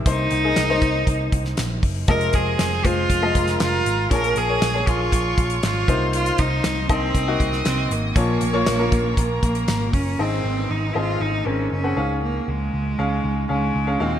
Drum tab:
HH |x-x-x-x-x-x-x-o-|xxx-x-x-x-xxx-x-|xxx-x-x-x-xxx-x-|xxx-x-x-x-x-x-x-|
CP |----x-------x---|----x-------x---|----x-------x---|----x-------x---|
SD |----o------oo---|----o------oo---|----o-------o---|----o------oo---|
BD |o-----o-o-o---o-|o-o---o-o-o-----|o-----o-o-o---o-|--o---o-o-o-----|

HH |x-x-x-x-x-xxx-o-|----------------|----------------|
CP |----x-------x---|----------------|----------------|
SD |----o-------o---|----------------|----------------|
BD |o-----o-o-o---o-|----------------|----------------|